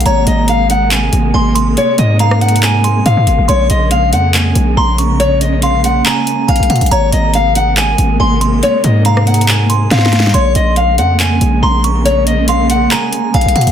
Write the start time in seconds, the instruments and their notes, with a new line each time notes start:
Already playing: string section G#3 A#3
0.01 closed hi-hat
0.06 808-style bass G#1, string section C3, steel-string acoustic guitar C#5, synth bell A#5, closed hi-hat
0.27 808-style bass G#1, steel-string acoustic guitar D#5, closed hi-hat
0.48 steel-string acoustic guitar F5, closed hi-hat
0.70 steel-string acoustic guitar F#5, closed hi-hat
0.91 steel-string acoustic guitar G#5, clap, closed hi-hat
1.13 808-style bass G#1, closed hi-hat
1.34 808-style bass G#1, synth bell G#5, steel-string acoustic guitar C6
1.55 synth bell C6, closed hi-hat
1.77 steel-string acoustic guitar C#5, closed hi-hat
1.98 808-style bass G#2, steel-string acoustic guitar D#5, closed hi-hat
2.19 steel-string acoustic guitar F5, synth bell A#5, closed hi-hat
2.31 cross-stick
2.41 steel-string acoustic guitar F#5, closed hi-hat
2.49 closed hi-hat
2.56 closed hi-hat
2.63 steel-string acoustic guitar G#5, clap, closed hi-hat
2.84 synth bell C6, closed hi-hat
3.06 808-style bass G#2, steel-string acoustic guitar F5, closed hi-hat
3.17 808-style bass G#2
3.27 808-style bass G#1, closed hi-hat
3.38 808-style bass G#1
3.48 808-style bass A#1, string section C#3, steel-string acoustic guitar C#5, synth bell C6, closed hi-hat
3.70 808-style bass A#1, steel-string acoustic guitar D#5, closed hi-hat
3.91 steel-string acoustic guitar F5, closed hi-hat
4.13 808-style bass F2, steel-string acoustic guitar F#5, closed hi-hat
4.34 steel-string acoustic guitar G#5, clap, closed hi-hat
4.55 808-style bass A#1, closed hi-hat
4.77 808-style bass A#1, synth bell A#5, steel-string acoustic guitar C6
4.98 synth bell C#6, closed hi-hat
5.20 steel-string acoustic guitar C#5, closed hi-hat
5.41 steel-string acoustic guitar D#5, closed hi-hat
5.62 steel-string acoustic guitar F5, synth bell C6, closed hi-hat
5.84 steel-string acoustic guitar F#5, closed hi-hat
6.06 steel-string acoustic guitar G#5, synth bell A#5, clap, closed hi-hat
6.27 closed hi-hat
6.48 808-style bass A#1, steel-string acoustic guitar F5, synth bell G#5, closed hi-hat
6.56 closed hi-hat
6.60 808-style bass A#1, closed hi-hat
6.70 808-style bass A#2, synth bell F#5, closed hi-hat, open hi-hat
6.76 closed hi-hat
6.81 808-style bass A#1, closed hi-hat
6.86 closed hi-hat
6.91 808-style bass G#1, string section C3 G#3 A#3, steel-string acoustic guitar C#5, synth bell A#5, closed hi-hat
7.12 808-style bass G#1, steel-string acoustic guitar D#5, closed hi-hat
7.34 steel-string acoustic guitar F5, closed hi-hat
7.55 steel-string acoustic guitar F#5, closed hi-hat
7.77 steel-string acoustic guitar G#5, clap, closed hi-hat
7.98 808-style bass G#1, closed hi-hat
8.20 808-style bass G#1, synth bell G#5, steel-string acoustic guitar C6
8.41 synth bell C6, closed hi-hat
8.63 steel-string acoustic guitar C#5, closed hi-hat
8.84 808-style bass G#2, steel-string acoustic guitar D#5, closed hi-hat
9.05 steel-string acoustic guitar F5, synth bell A#5, closed hi-hat
9.17 cross-stick
9.27 steel-string acoustic guitar F#5, closed hi-hat
9.34 closed hi-hat
9.41 closed hi-hat
9.48 steel-string acoustic guitar G#5, clap, closed hi-hat
9.70 synth bell C6, closed hi-hat
9.91 808-style bass G#2, steel-string acoustic guitar F5, snare, closed hi-hat
9.98 snare
10.06 snare
10.13 snare, closed hi-hat
10.20 snare
10.27 snare
10.34 808-style bass A#1, string section C#3 G#3 A#3, steel-string acoustic guitar C#5, synth bell C6, closed hi-hat
10.55 808-style bass A#1, steel-string acoustic guitar D#5, closed hi-hat
10.76 steel-string acoustic guitar F5, closed hi-hat
10.98 808-style bass F2, steel-string acoustic guitar F#5, closed hi-hat
11.20 steel-string acoustic guitar G#5, clap, closed hi-hat
11.41 808-style bass A#1, closed hi-hat
11.63 808-style bass A#1, synth bell A#5, steel-string acoustic guitar C6
11.84 synth bell C#6, closed hi-hat
12.05 steel-string acoustic guitar C#5, closed hi-hat
12.27 steel-string acoustic guitar D#5, closed hi-hat
12.48 steel-string acoustic guitar F5, synth bell C6, closed hi-hat
12.70 steel-string acoustic guitar F#5, closed hi-hat
12.91 steel-string acoustic guitar G#5, synth bell A#5, clap, closed hi-hat
13.13 closed hi-hat
13.34 808-style bass A#1, steel-string acoustic guitar F5, synth bell G#5, closed hi-hat
13.41 closed hi-hat
13.46 808-style bass A#1, closed hi-hat
13.56 808-style bass A#2, synth bell F#5, closed hi-hat, open hi-hat
13.61 closed hi-hat
13.67 808-style bass A#1, closed hi-hat